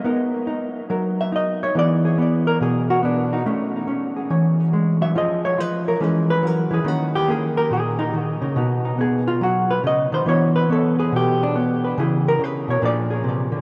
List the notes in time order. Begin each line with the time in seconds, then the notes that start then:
Already playing: D#5
0.04 B3 D#4 A#4
0.47 D#4
0.90 F#3 A#4
1.21 E5
1.32 D#4 D#5
1.63 C#5
1.75 E3 B3 G#4 D5
2.05 G#4
2.18 B3
2.47 A#4
2.61 B2 G#4
2.90 F#4
3.03 B3 D4
3.33 D#4
3.46 A3 C#4
3.87 C#4
4.16 G#4
4.30 E3 C#5
4.73 G#3
5.01 F#3 E5
5.15 F3 F4 G#4 D#5
5.45 C#5
5.58 F4 B4
5.88 A#4
6.00 E3 G#3 C#4 G#4
6.30 B4
6.43 F#3
6.47 A#4
6.71 E3 G#4
6.84 D#3 A#3 C#4 F#4
7.15 G4
7.28 A#3 G#4
7.57 A#4
7.70 A#2 G#4
7.99 D#4
8.13 D#3
8.41 C#3
8.56 B2 B3 D#4
8.85 D#4
8.98 B3 G#4
9.28 F4
9.41 F#3 F#4
9.71 B4
9.84 C#3 D#5
10.12 D#3 C5
10.26 E3 B3 D4 C#5
10.56 B4
10.70 B3 A4
11.00 G#4
11.12 B2
11.16 G4
11.43 D4
11.55 B3
11.84 B4
11.98 C#3 E3 E4 G#4
12.28 A#4
12.39 C#3
12.44 B4
12.68 B2 C#5
12.82 A#2 F3 D4 G#4 D5
13.10 G#4
13.24 C3
13.52 D3